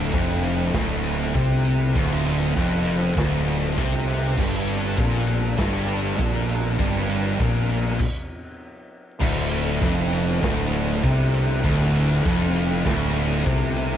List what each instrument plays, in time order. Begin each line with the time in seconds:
Already playing: distorted electric guitar D2, tonewheel organ D3 A3 E4
0.12 fingered electric bass F1, distorted electric guitar F2, kick, ride
0.43 ride
0.73 fingered electric bass D1, distorted electric guitar D2, kick, snare, ride
1.04 ride
1.35 fingered electric bass C2, distorted electric guitar C3, kick, ride
1.65 ride
1.95 fingered electric bass D1, distorted electric guitar D2, kick, ride
1.99 tonewheel organ F4
2.26 ride
2.56 fingered electric bass F1, distorted electric guitar F2, kick, ride
2.88 ride
3.17 fingered electric bass D1, distorted electric guitar D2, kick, snare, ride
3.48 ride
3.64 snare
3.77 fingered electric bass C2, distorted electric guitar C3, kick, ride
4.08 ride
4.37 fingered electric bass G1, distorted electric guitar G2, tonewheel organ G3 D4 A4, kick, crash
4.68 ride
4.97 fingered electric bass A#1, distorted electric guitar A#2, kick, ride
5.27 ride
5.57 fingered electric bass G1, distorted electric guitar G2, kick, snare, ride
5.88 ride
6.18 fingered electric bass A#1, distorted electric guitar A#2, kick, ride
6.49 ride
6.79 fingered electric bass G1, distorted electric guitar G2, tonewheel organ A#4, kick, ride
7.10 ride
7.39 fingered electric bass A#1, distorted electric guitar A#2, kick, ride
7.70 ride
7.99 kick, crash
9.21 fingered electric bass D1, distorted electric guitar D2, tonewheel organ D3 A3 E4, kick, crash
9.51 ride
9.81 fingered electric bass F1, distorted electric guitar F2, kick, ride
10.13 ride
10.43 fingered electric bass D1, distorted electric guitar D2, kick, snare, ride
10.73 ride
10.90 snare
11.03 fingered electric bass C2, distorted electric guitar C3, kick, ride
11.34 ride
11.64 fingered electric bass D1, distorted electric guitar D2, kick, ride
11.95 ride
12.25 fingered electric bass F1, distorted electric guitar F2, kick, ride
12.56 ride
12.86 fingered electric bass D1, distorted electric guitar D2, kick, snare, ride
13.16 ride
13.46 fingered electric bass C2, distorted electric guitar C3, kick, ride
13.76 ride